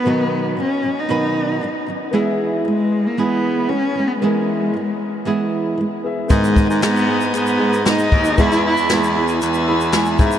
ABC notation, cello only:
X:1
M:4/4
L:1/16
Q:1/4=115
K:Elyd
V:1 name="Cello"
B,4 C3 D6 z3 | z4 G,3 A, B,4 C3 B, | G,8 z8 | [K:G#m] G,4 B,4 B,4 D4 |
E2 E4 z8 z2 |]